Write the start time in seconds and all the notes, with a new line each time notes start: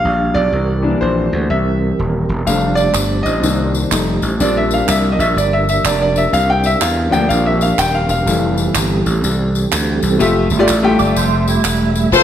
Already playing: F3 G3 D4 G4 F5
0.05 A#1
0.34 B1 D5
0.52 C2 E3 C4 A#4
0.82 E3 A#3 D4
1.01 A#1 C5
1.33 D2
1.50 C2 E5
1.99 D#1
2.29 E1
2.46 F1 F3 G3 A3 D4 G4 C5 F5, tambourine
2.75 D5, tambourine
2.94 G1, clap, tambourine
3.23 A1 D#5, tambourine
3.42 C2 D#3 A#3 C4 D4 G4, tambourine
3.75 tambourine
3.90 F1 F3 G3 A3 D#4, clap, tambourine
4.22 A1, tambourine
4.40 A#1 F3 G3 A#3 C4 D4 A#4 D5, tambourine
4.57 E5
4.71 F5, tambourine
4.88 C2 E5, clap, tambourine
5.12 D#5
5.19 A#1 E5, tambourine
5.36 G1 D5, tambourine
5.53 E5
5.69 E5, tambourine
5.85 F1 D5, clap, tambourine
6.02 D5
6.16 E5, tambourine
6.33 C2 G3 C4 F5, tambourine
6.50 G5
6.64 E5, tambourine
6.81 E2 F5, clap, tambourine
7.10 D2 F3 A#3 D4 G5, tambourine
7.29 A#1 F5, tambourine
7.46 E5
7.61 F5, tambourine
7.78 D#1 G5, clap, tambourine
7.95 F5
8.09 E1 F5, tambourine
8.26 F1 E3 G3 A3 A4, tambourine
8.58 tambourine
8.75 G1, clap, tambourine
9.06 A1, tambourine
9.24 C2, tambourine
9.55 tambourine
9.72 D2, clap, tambourine
10.03 C2, tambourine
10.19 F1 A3 F4 G4 E5, tambourine
10.50 G1 G3 A3 E5, tambourine
10.59 A3 F4 G4 D5
10.68 A1, clap, tambourine
10.83 A3 F4 G4 G5
10.99 G1 D5, tambourine
11.16 F1 A4 C5, tambourine
11.48 E4 G4, tambourine
11.64 E1, clap, tambourine
11.95 tambourine
12.12 F1 F4 A4 C5 A5 C6, tambourine